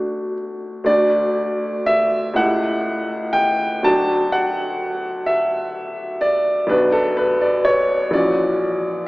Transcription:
0.00 0.85 A3 soft
0.00 0.86 D4 soft
0.00 0.88 F#4 soft
0.00 0.34 D5 medium
0.84 2.32 D2 medium
0.84 2.32 A3 soft
0.84 2.33 D4 soft
0.84 2.34 F#4 soft
0.84 1.88 D5 loud
1.86 2.37 E5 loud
2.34 3.80 C#2 medium
2.34 3.80 A3 medium
2.34 3.81 E4 medium
2.34 3.35 F#5 medium
2.38 3.82 G4 medium
3.33 3.84 G5 loud
3.83 6.66 D2 medium
3.83 6.67 F#3 medium
3.83 6.68 D4 medium
3.83 6.68 F#4 soft
3.83 4.34 A5 loud
4.32 5.28 F#5 medium
5.26 6.23 E5 medium
6.21 6.70 D5 loud
6.67 8.08 B1 medium
6.67 8.08 F#3 medium
6.67 8.09 D4 medium
6.67 8.09 F#4 soft
6.67 6.94 B4 medium
6.92 7.18 A4 medium
7.17 7.42 B4 medium
7.41 7.66 D5 medium
7.65 8.13 C#5 loud
8.11 9.08 A#1 medium
8.11 9.08 E3 medium
8.11 9.08 C#4 medium
8.11 9.07 D5 medium
8.15 9.08 F#4 medium

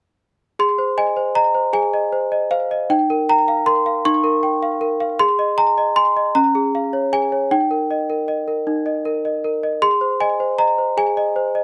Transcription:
0.59 1.72 G#4 medium
0.59 0.98 C6 medium
0.78 1.10 C5 soft
0.97 1.29 D#5 soft
0.97 1.37 G#5 medium
1.16 1.48 C5 soft
1.35 1.67 D#5 soft
1.35 1.75 A#5 medium
1.54 1.86 C5 soft
1.73 2.86 G#4 soft
1.73 2.51 G#5 medium
1.94 2.25 D#5 soft
2.12 2.44 C5 soft
2.32 2.63 D#5 soft
2.51 2.82 C5 soft
2.51 2.90 F5 medium
2.71 2.91 D#5 soft
2.90 4.04 D#4 medium
2.90 3.28 G5 medium
3.10 3.41 A#4 soft
3.29 3.60 G5 soft
3.29 3.68 A#5 medium
3.48 3.79 F5 soft
3.66 3.97 A#4 soft
3.66 4.05 C6 medium
3.86 4.17 F5 soft
4.05 5.17 D#4 medium
4.05 5.20 C#6 medium
4.24 4.55 A#4 soft
4.43 4.74 G5 soft
4.63 4.93 F5 soft
4.81 5.12 A#4 soft
5.00 5.20 F5 soft
5.20 6.32 G#4 medium
5.20 5.58 C6 loud
5.39 5.70 D#5 soft
5.58 5.89 G#5 soft
5.58 5.97 A#5 medium
5.78 6.09 D#5 soft
5.96 6.27 G#5 soft
5.96 6.35 C6 medium
6.17 6.36 D#5 soft
6.35 7.47 C#4 medium
6.35 7.12 A#5 medium
6.55 6.86 G#4 soft
6.75 7.05 F5 soft
6.93 7.24 C#5 soft
7.13 7.43 G#4 soft
7.13 7.51 G#5 medium
7.32 7.51 C#5 soft
7.51 8.66 D#4 medium
7.51 9.44 G5 medium
7.71 8.01 A#4 soft
7.91 8.21 D#5 soft
8.10 8.40 A#4 soft
8.28 8.59 D#5 soft
8.48 8.78 A#4 soft
8.67 9.79 D#4 soft
8.86 9.17 D#5 soft
9.05 9.36 A#4 soft
9.25 9.56 D#5 soft
9.44 9.75 A#4 soft
9.63 9.83 D#5 soft
9.82 10.96 G#4 soft
9.82 10.21 C6 medium
10.01 10.32 C5 soft
10.20 10.52 D#5 soft
10.20 10.59 G#5 medium
10.40 10.71 C5 soft
10.58 10.90 D#5 soft
10.58 10.98 A#5 medium
10.78 11.09 C5 soft
10.97 11.64 G#4 soft
10.97 11.64 G#5 medium
11.17 11.48 D#5 soft
11.36 11.64 C5 soft
11.55 11.64 D#5 soft

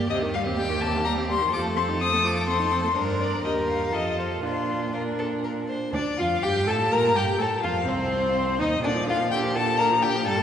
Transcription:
0.00 0.10 A#3 soft
0.00 0.11 G4 soft
0.10 1.50 D#2 medium
0.10 0.24 C3 medium
0.10 1.50 G4 medium
0.10 0.18 D#5 medium
0.23 0.36 D#3 soft
0.34 0.48 G3 soft
0.34 0.42 F5 medium
0.46 0.59 C4 soft
0.57 0.71 G3 soft
0.57 0.83 G5 medium
0.70 0.84 D#3 soft
0.81 0.96 C3 soft
0.81 1.04 A5 medium
0.95 1.08 D#3 soft
1.04 1.19 G3 soft
1.04 1.12 A#5 medium
1.18 1.31 C4 soft
1.30 1.43 G3 soft
1.30 1.52 C6 medium
1.41 1.53 D#3 soft
1.53 2.93 F2 soft
1.53 1.66 F3 soft
1.53 2.93 A4 medium
1.53 1.61 D6 medium
1.65 1.78 A3 soft
1.77 1.90 C4 soft
1.77 1.85 C6 medium
1.89 2.03 D#4 soft
2.00 2.15 C4 soft
2.00 2.27 D#6 medium
2.13 2.26 A3 soft
2.25 2.38 F3 soft
2.25 2.48 D6 medium
2.36 2.49 A3 soft
2.48 2.61 C4 soft
2.48 2.96 C6 medium
2.59 2.73 D#4 soft
2.71 2.85 C4 soft
2.83 2.95 A3 soft
2.95 3.41 G2 soft
2.95 3.46 D4 soft
2.95 3.40 A#4 soft
2.95 3.22 C5 medium
3.20 3.44 D5 soft
3.43 3.93 D#2 soft
3.43 3.93 G4 soft
3.43 3.94 A#4 soft
3.43 3.53 D#5 medium
3.68 3.96 F5 soft
3.93 4.43 F2 soft
3.93 4.44 F4 soft
3.93 4.43 A4 soft
3.93 4.18 D#5 soft
4.18 4.26 C5 soft
4.43 5.71 A#2 soft
4.43 4.92 D4 soft
4.43 4.93 F4 soft
4.43 4.95 C5 soft
4.93 5.72 D4 soft
4.93 5.02 F4 soft
4.93 5.44 A#4 soft
5.19 5.27 A4 soft
5.45 5.53 A#4 soft
5.69 5.93 C5 soft
5.93 6.01 D2 medium
5.93 6.17 D4 medium
5.93 6.02 D4 medium
5.93 6.20 D5 medium
6.18 6.42 F2 medium
6.18 6.26 F4 medium
6.18 6.45 F4 medium
6.18 6.45 F5 medium
6.42 6.68 G2 medium
6.42 6.67 G4 medium
6.42 6.68 G4 medium
6.42 6.71 G5 medium
6.66 6.92 A2 medium
6.66 6.93 A4 medium
6.66 6.76 A4 medium
6.66 6.93 A5 medium
6.91 7.15 A#2 medium
6.91 7.17 A#4 medium
6.91 7.15 A#4 medium
6.91 7.17 A#5 medium
7.15 7.24 G2 medium
7.15 7.40 G4 medium
7.15 7.24 G4 medium
7.15 7.42 G5 medium
7.38 7.47 A2 soft
7.38 7.62 A4 soft
7.38 7.49 A4 soft
7.38 7.64 A5 medium
7.63 7.89 F2 medium
7.63 7.87 F4 medium
7.63 7.72 F4 medium
7.63 7.90 F5 medium
7.87 8.61 C2 medium
7.87 8.59 C4 medium
7.87 8.61 C4 medium
7.87 8.62 C5 medium
8.59 8.84 D#2 medium
8.59 8.83 D#4 medium
8.59 8.69 D#4 medium
8.59 8.83 D#5 medium
8.84 10.29 A#2 medium
8.84 8.97 D3 soft
8.84 8.92 D4 medium
8.84 9.08 D5 medium
8.95 9.08 F3 soft
9.07 9.21 D3 soft
9.07 9.18 F4 medium
9.07 9.30 F5 medium
9.20 9.31 F3 soft
9.31 9.45 D3 soft
9.31 9.57 G4 medium
9.31 9.39 G5 medium
9.43 9.57 F3 soft
9.56 9.68 D3 soft
9.56 9.79 A4 medium
9.56 9.79 A5 medium
9.67 9.78 F3 soft
9.77 9.93 D3 soft
9.77 9.88 A#4 medium
9.77 10.04 A#5 medium
9.91 10.04 F3 soft
10.02 10.16 D3 soft
10.02 10.27 G4 medium
10.02 10.28 G5 medium
10.15 10.25 F3 soft
10.26 10.43 G2 medium
10.26 10.39 G3 medium
10.26 10.43 A4 medium
10.26 10.43 A5 medium
10.38 10.43 A#3 soft

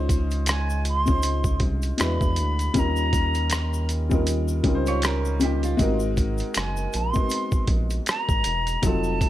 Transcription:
0.00 1.58 C#2 loud
0.00 0.93 G#3 loud
0.00 0.93 C#4 medium
0.00 0.94 D#4 medium
0.00 0.94 F4 medium
0.00 0.95 C5 loud
0.09 kick medium
0.09 closed hi-hat soft
0.09 shaker soft
0.31 closed hi-hat soft
0.31 shaker soft
0.46 0.84 G#5 medium
0.46 finger snap medium
0.46 cross-stick loud
0.46 closed hi-hat medium
0.46 shaker medium
0.70 shaker soft
0.85 1.59 C6 loud
0.85 closed hi-hat soft
0.85 shaker soft
1.06 1.96 G#3 medium
1.06 1.99 C#4 medium
1.06 2.00 D#4 medium
1.06 2.00 F4 medium
1.06 kick medium
1.06 shaker soft
1.10 2.01 C5 medium
1.22 closed hi-hat medium
1.22 shaker medium
1.44 kick medium
1.44 shaker soft
1.60 1.93 C2 medium
1.60 kick medium
1.60 closed hi-hat soft
1.82 closed hi-hat soft
1.82 shaker soft
1.97 2.18 E2 loud
1.97 2.68 G#3 medium
1.97 2.69 D4 medium
1.97 2.69 E4 medium
1.97 2.70 F#4 medium
1.97 finger snap medium
1.97 cross-stick loud
1.97 closed hi-hat medium
1.97 shaker soft
2.02 2.71 B4 medium
2.02 2.80 B5 medium
2.21 2.40 E2 medium
2.21 kick medium
2.21 shaker soft
2.36 2.69 D2 loud
2.36 closed hi-hat medium
2.36 shaker soft
2.59 closed hi-hat soft
2.59 shaker soft
2.74 4.61 D#2 loud
2.74 3.96 G3 medium
2.74 3.97 C#4 medium
2.74 3.98 D#4 medium
2.74 3.98 F4 medium
2.74 kick loud
2.74 closed hi-hat medium
2.74 shaker soft
2.79 3.99 A#4 loud
2.79 3.91 A#5 loud
2.96 shaker soft
3.13 kick medium
3.13 closed hi-hat soft
3.13 shaker soft
3.35 closed hi-hat soft
3.35 shaker soft
3.50 finger snap medium
3.50 cross-stick loud
3.50 closed hi-hat medium
3.50 shaker medium
3.74 shaker soft
3.89 closed hi-hat soft
3.89 shaker soft
4.09 4.60 G3 medium
4.09 4.60 C#4 medium
4.09 4.61 D#4 medium
4.09 4.62 F4 medium
4.09 kick medium
4.09 shaker soft
4.14 4.62 A#4 medium
4.27 closed hi-hat medium
4.27 shaker medium
4.48 shaker soft
4.63 5.75 C#2 medium
4.63 5.34 G3 medium
4.63 5.35 C#4 medium
4.63 5.36 D#4 medium
4.63 5.36 F4 medium
4.63 kick medium
4.63 closed hi-hat medium
4.68 4.74 A#4 medium
4.75 5.40 C5 medium
4.86 5.03 F4 medium
4.86 5.03 C#5 medium
4.86 closed hi-hat soft
4.86 shaker soft
5.02 5.40 C#4 medium
5.02 5.40 A#4 medium
5.02 finger snap medium
5.02 cross-stick loud
5.02 closed hi-hat medium
5.02 shaker medium
5.25 shaker soft
5.39 5.75 G3 medium
5.39 5.63 A#3 medium
5.39 5.76 C#4 medium
5.39 5.77 D#4 medium
5.39 5.77 F4 medium
5.39 5.62 G4 medium
5.39 closed hi-hat medium
5.39 shaker soft
5.45 5.78 G4 medium
5.63 6.00 F4 medium
5.63 closed hi-hat soft
5.63 shaker soft
5.77 6.42 G#1 loud
5.77 7.00 G#3 loud
5.77 7.01 C4 loud
5.77 7.01 D#4 medium
5.77 7.02 F#4 loud
5.77 kick loud
5.77 closed hi-hat medium
5.77 shaker soft
5.82 7.02 A#4 loud
6.00 shaker soft
6.17 kick medium
6.17 closed hi-hat soft
6.17 shaker soft
6.38 closed hi-hat soft
6.38 shaker soft
6.54 6.87 F#1 medium
6.54 6.98 G#5 medium
6.54 finger snap medium
6.54 cross-stick loud
6.54 closed hi-hat medium
6.54 shaker medium
6.77 shaker soft
6.93 7.12 A#1 medium
6.93 7.71 C6 loud
6.93 closed hi-hat soft
6.93 shaker soft
7.13 8.50 G#3 medium
7.13 7.20 B3 soft
7.13 8.51 D#4 medium
7.13 8.52 F#4 medium
7.13 kick medium
7.13 shaker soft
7.18 8.54 C4 medium
7.18 8.52 A#4 medium
7.30 closed hi-hat medium
7.30 shaker medium
7.52 kick medium
7.52 shaker soft
7.67 8.00 A#1 medium
7.67 kick medium
7.67 closed hi-hat soft
7.90 closed hi-hat soft
7.90 shaker soft
8.06 8.87 A#5 loud
8.06 finger snap medium
8.06 cross-stick medium
8.06 closed hi-hat medium
8.06 shaker medium
8.29 8.42 G#1 medium
8.29 kick medium
8.29 shaker soft
8.44 8.77 E1 medium
8.44 closed hi-hat medium
8.44 shaker soft
8.67 closed hi-hat soft
8.67 shaker soft
8.82 9.29 F1 loud
8.82 9.29 F#3 medium
8.82 9.29 C4 medium
8.82 9.29 D#4 medium
8.82 9.29 F4 medium
8.82 9.29 A5 loud
8.82 kick loud
8.82 closed hi-hat medium
8.82 shaker soft
8.87 9.29 A4 medium
9.04 shaker soft
9.21 kick medium
9.21 closed hi-hat soft
9.21 shaker soft

